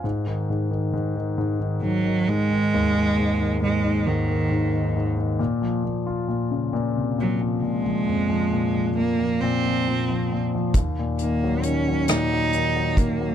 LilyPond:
<<
  \new Staff \with { instrumentName = "Cello" } { \time 6/8 \key aes \mixolydian \tempo 4. = 45 r2 ges8 aes8~ | aes4 aes8 ees4 r8 | r2 ges8 aes8~ | aes4 bes8 c'4 r8 |
r8 bes8 des'8 ees'4 bes8 | }
  \new Staff \with { instrumentName = "Grand piano" } { \clef bass \time 6/8 \key aes \mixolydian aes,16 ees16 aes,16 ees16 aes,16 ees16 aes,16 ees16 aes,16 ees16 aes,16 ees16 | ees,16 ees16 aes,16 ees16 aes,16 ees16 aes,16 ees16 aes,16 ees16 aes,16 ees16 | bes,16 f16 bes,16 f'16 bes,16 des16 bes,16 c16 bes,16 f16 bes,16 f16 | f,16 f16 bes,16 f16 bes,16 f16 bes,16 f16 bes,16 f16 bes,16 f16 |
ees,16 bes,16 ees16 ges16 ees16 ges16 bes,16 ges16 ees16 ges16 ees16 ges16 | }
  \new DrumStaff \with { instrumentName = "Drums" } \drummode { \time 6/8 r4. r4. | r4. r4. | r4. r4. | r4. r4. |
<hh bd>8 hh8 hh8 <hh ss>8 hh8 <hh bd>8 | }
>>